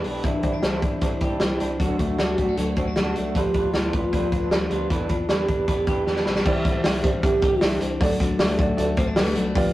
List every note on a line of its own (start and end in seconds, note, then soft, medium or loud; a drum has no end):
0.00 0.28 B3 medium
0.00 0.28 G4 medium
0.00 open hi-hat medium
0.04 0.20 B1 medium
0.04 0.43 D4 medium
0.04 0.24 D4 soft
0.04 0.24 E4 medium
0.23 0.40 C2 medium
0.23 0.43 C3 medium
0.23 1.79 E3 medium
0.23 0.44 E3 medium
0.23 0.44 G3 medium
0.23 0.65 D4 medium
0.23 0.43 D4 medium
0.23 0.42 E4 medium
0.23 kick loud
0.23 closed hi-hat medium
0.43 0.59 C2 medium
0.43 0.62 G3 soft
0.43 0.53 C4 medium
0.43 0.62 D4 soft
0.43 0.63 E4 medium
0.43 kick medium
0.43 closed hi-hat medium
0.53 0.81 D4 soft
0.62 0.79 C2 medium
0.62 0.82 C3 medium
0.62 0.82 E3 medium
0.62 0.83 G3 medium
0.62 1.01 C4 medium
0.62 0.82 D4 medium
0.62 0.81 E4 medium
0.62 0.82 C5 medium
0.62 snare loud
0.62 closed hi-hat medium
0.82 0.98 C2 medium
0.82 1.01 G3 soft
0.82 1.60 D4 soft
0.82 1.02 D4 soft
0.82 1.04 D4 medium
0.82 1.02 E4 soft
0.82 kick medium
0.82 closed hi-hat medium
1.01 1.18 C2 medium
1.01 1.21 E3 medium
1.01 1.21 G3 medium
1.01 1.40 C4 medium
1.01 1.21 D4 medium
1.01 1.41 E4 medium
1.01 1.20 E4 medium
1.01 kick medium
1.01 closed hi-hat medium
1.20 1.37 C2 medium
1.20 1.40 G3 soft
1.20 1.40 D4 soft
1.20 1.40 E4 medium
1.20 1.84 G4 medium
1.20 kick medium
1.20 closed hi-hat medium
1.40 1.57 C2 medium
1.40 1.60 C3 medium
1.40 1.60 E3 medium
1.40 1.60 G3 medium
1.40 1.84 C4 medium
1.40 1.59 D4 medium
1.40 1.80 E4 medium
1.40 1.58 E4 medium
1.40 snare loud
1.40 closed hi-hat medium
1.59 1.76 C2 medium
1.59 1.79 G3 soft
1.59 1.79 D4 soft
1.59 2.77 D4 medium
1.59 1.79 E4 medium
1.59 closed hi-hat medium
1.79 1.96 D2 medium
1.79 1.99 D3 medium
1.79 2.18 F#3 medium
1.79 1.99 A3 medium
1.79 1.99 D4 medium
1.79 1.85 E4 medium
1.79 1.97 F#4 medium
1.79 kick loud
1.79 closed hi-hat medium
1.84 2.21 D4 medium
1.98 2.15 D2 medium
1.98 2.38 A3 medium
1.98 2.18 A3 soft
1.98 2.18 D4 soft
1.98 2.18 F#4 medium
1.98 kick medium
1.98 closed hi-hat medium
2.18 2.34 D2 medium
2.18 2.38 D3 medium
2.18 2.57 F#3 soft
2.18 2.38 A3 medium
2.18 2.37 D4 medium
2.18 2.36 F#4 medium
2.18 2.57 F#4 medium
2.18 snare medium
2.18 closed hi-hat medium
2.37 2.54 D2 medium
2.37 2.49 G3 medium
2.37 2.56 A3 soft
2.37 2.57 D4 soft
2.37 2.57 F#4 medium
2.37 kick medium
2.37 closed hi-hat medium
2.49 3.15 A3 soft
2.56 2.73 D2 loud
2.56 2.76 D3 medium
2.56 2.96 F#3 medium
2.56 2.77 A3 medium
2.56 3.12 D4 medium
2.56 2.77 D4 medium
2.56 2.75 F#4 medium
2.56 closed hi-hat loud
2.76 2.93 D2 medium
2.76 2.95 A3 soft
2.76 2.88 C4 medium
2.76 2.96 D4 soft
2.76 2.96 F#4 soft
2.76 kick medium
2.76 closed hi-hat medium
2.88 3.40 D4 soft
2.96 3.12 D2 medium
2.96 3.15 D3 medium
2.96 3.35 F#3 medium
2.96 3.16 A3 medium
2.96 3.16 D4 medium
2.96 3.14 F#4 medium
2.96 snare loud
2.96 closed hi-hat medium
3.16 3.32 C2 medium
3.16 3.39 A3 medium
3.16 3.36 A3 soft
3.16 3.35 D4 medium
3.16 3.35 F#4 medium
3.16 closed hi-hat medium
3.35 3.51 D2 medium
3.35 3.55 D3 medium
3.35 3.73 F3 medium
3.35 3.55 G3 medium
3.35 3.55 D4 medium
3.35 3.55 F4 medium
3.35 3.77 G4 loud
3.35 3.53 B4 medium
3.35 kick loud
3.35 closed hi-hat medium
3.54 3.70 D2 medium
3.54 3.93 B3 medium
3.54 3.74 D4 soft
3.54 3.74 F4 soft
3.54 3.74 B4 medium
3.54 kick medium
3.54 closed hi-hat medium
3.74 3.90 D2 medium
3.74 3.93 D3 medium
3.74 4.12 F3 medium
3.74 3.94 G3 medium
3.74 3.94 D4 medium
3.74 3.96 E4 medium
3.74 3.93 F4 medium
3.74 3.92 B4 medium
3.74 snare loud
3.74 closed hi-hat medium
3.93 4.09 D2 medium
3.93 4.71 B3 soft
3.93 4.12 D4 soft
3.93 4.53 F4 loud
3.93 4.13 F4 soft
3.93 4.13 B4 soft
3.93 kick medium
3.93 closed hi-hat medium
4.12 4.29 D2 medium
4.12 4.51 F3 medium
4.12 4.32 G3 medium
4.12 4.32 D4 medium
4.12 4.32 F4 medium
4.12 4.30 B4 medium
4.12 kick medium
4.12 closed hi-hat medium
4.31 4.48 D2 medium
4.31 5.11 D4 medium
4.31 4.50 D4 soft
4.31 4.51 F4 soft
4.31 4.51 B4 medium
4.31 kick medium
4.31 closed hi-hat medium
4.51 4.67 D2 medium
4.51 4.71 D3 medium
4.51 4.95 F3 medium
4.51 4.71 G3 medium
4.51 4.71 D4 medium
4.51 4.70 F4 medium
4.51 4.58 A4 medium
4.51 4.69 B4 medium
4.51 snare loud
4.51 closed hi-hat medium
4.57 4.92 G4 medium
4.70 4.86 D2 medium
4.70 4.90 B3 medium
4.70 4.90 D4 soft
4.70 4.91 F4 soft
4.70 4.90 B4 soft
4.70 closed hi-hat medium
4.90 5.06 E2 loud
4.90 5.10 E3 medium
4.90 5.10 G3 medium
4.90 5.29 B3 medium
4.90 5.10 D4 medium
4.90 5.11 E4 medium
4.90 5.09 E4 medium
4.90 5.08 B4 medium
4.90 kick loud
4.90 closed hi-hat medium
5.09 5.26 E2 medium
5.09 5.49 D4 medium
5.09 5.28 D4 soft
5.09 5.28 E4 soft
5.09 5.31 F4 medium
5.09 5.29 B4 medium
5.09 kick medium
5.09 closed hi-hat medium
5.28 5.45 E2 medium
5.28 5.48 E3 medium
5.28 5.49 G3 medium
5.28 5.68 B3 medium
5.28 5.49 D4 medium
5.28 5.48 E4 medium
5.28 6.27 G4 medium
5.28 5.46 B4 medium
5.28 snare loud
5.28 closed hi-hat medium
5.48 5.65 E2 medium
5.48 6.27 D4 soft
5.48 5.67 D4 soft
5.48 5.68 E4 soft
5.48 5.68 B4 medium
5.48 kick medium
5.48 closed hi-hat medium
5.67 5.84 E2 medium
5.67 5.87 G3 medium
5.67 6.06 B3 medium
5.67 5.87 D4 medium
5.67 5.87 E4 medium
5.67 5.85 B4 medium
5.67 kick medium
5.67 closed hi-hat medium
5.86 6.03 E2 medium
5.86 6.06 D4 soft
5.86 6.06 E4 soft
5.86 6.50 G4 medium
5.86 6.06 B4 medium
5.86 kick medium
5.86 closed hi-hat medium
6.06 6.22 E2 loud
6.06 6.26 E3 medium
6.06 6.26 G3 medium
6.06 6.50 B3 medium
6.06 6.26 D4 medium
6.06 6.25 E4 medium
6.06 6.24 B4 medium
6.06 snare soft
6.16 snare soft
6.25 6.42 B1 medium
6.25 6.36 C4 medium
6.25 6.46 D4 soft
6.25 6.46 E4 soft
6.25 6.45 B4 medium
6.25 snare medium
6.36 6.50 D4 soft
6.36 snare medium
6.45 6.62 C2 loud
6.45 8.00 E3 medium
6.45 6.79 E4 loud
6.45 6.79 G4 loud
6.45 6.79 C5 loud
6.45 6.79 D5 loud
6.45 kick loud
6.45 crash medium
6.65 6.81 C2 loud
6.65 7.03 C4 medium
6.65 kick medium
6.65 hi-hat pedal medium
6.65 open hi-hat medium
6.84 7.00 C2 loud
6.84 7.23 D4 medium
6.84 7.01 E4 medium
6.84 7.01 G4 medium
6.84 7.01 C5 medium
6.84 7.01 E5 loud
6.84 snare loud
6.84 hi-hat pedal medium
6.84 open hi-hat medium
7.04 7.20 C2 loud
7.04 7.80 C4 medium
7.04 7.20 E4 medium
7.04 7.10 G4 loud
7.04 7.21 G4 medium
7.04 7.20 C5 medium
7.04 7.20 D5 medium
7.04 kick loud
7.04 hi-hat pedal medium
7.04 open hi-hat medium
7.23 7.39 C2 loud
7.23 7.62 D4 medium
7.23 7.56 E4 medium
7.23 7.56 G4 medium
7.23 7.64 G4 loud
7.23 7.56 C5 medium
7.23 7.56 E5 medium
7.23 kick loud
7.23 hi-hat pedal medium
7.23 open hi-hat loud
7.42 7.58 C2 loud
7.42 8.04 G4 medium
7.42 kick loud
7.42 hi-hat pedal medium
7.42 open hi-hat medium
7.61 7.77 C2 loud
7.61 8.97 D4 medium
7.61 7.95 E4 medium
7.61 8.03 E4 loud
7.61 7.95 G4 medium
7.61 7.95 C5 medium
7.61 7.95 E5 medium
7.61 snare loud
7.61 hi-hat pedal medium
7.61 open hi-hat medium
7.81 7.97 C2 medium
7.81 8.05 C4 medium
7.81 hi-hat pedal medium
7.81 open hi-hat medium
8.01 8.16 D2 loud
8.01 8.19 F#3 medium
8.01 8.34 D4 loud
8.01 8.40 D4 medium
8.01 8.34 F#4 medium
8.01 8.34 A4 medium
8.01 8.34 D5 loud
8.01 kick loud
8.01 hi-hat pedal medium
8.01 open hi-hat loud
8.20 8.36 D2 loud
8.20 8.58 F#3 medium
8.20 kick medium
8.20 hi-hat pedal medium
8.20 open hi-hat medium
8.39 8.55 D2 loud
8.39 8.77 A3 medium
8.39 8.56 D4 medium
8.39 8.56 F#4 medium
8.39 8.56 A4 medium
8.39 8.56 D5 medium
8.39 snare loud
8.39 hi-hat pedal medium
8.39 open hi-hat loud
8.58 8.75 D2 loud
8.58 9.35 F#3 medium
8.58 8.75 D4 medium
8.58 8.75 F#4 medium
8.58 8.75 A4 medium
8.58 8.75 D5 loud
8.58 kick loud
8.58 hi-hat pedal medium
8.58 open hi-hat medium
8.77 8.94 D2 loud
8.77 9.17 A3 medium
8.77 9.10 D4 medium
8.77 9.10 F#4 medium
8.77 9.10 A4 medium
8.77 9.10 D5 loud
8.77 hi-hat pedal medium
8.77 open hi-hat loud
8.97 9.13 D2 loud
8.97 9.07 C4 medium
8.97 kick loud
8.97 hi-hat pedal medium
8.97 open hi-hat medium
9.07 9.59 D4 medium
9.16 9.33 D2 loud
9.16 9.27 G3 medium
9.16 9.49 D4 medium
9.16 9.49 F#4 medium
9.16 9.50 A4 medium
9.16 9.49 B4 loud
9.16 snare loud
9.16 hi-hat pedal medium
9.16 open hi-hat medium
9.27 9.59 A3 medium
9.35 9.52 C2 medium
9.35 9.56 F#3 medium
9.35 hi-hat pedal medium
9.35 open hi-hat medium
9.55 9.71 D2 loud
9.55 9.73 F3 medium
9.55 9.73 F4 loud
9.55 9.73 G4 loud
9.55 9.73 B4 loud
9.55 9.73 D5 loud
9.55 kick loud
9.55 hi-hat pedal medium
9.55 open hi-hat medium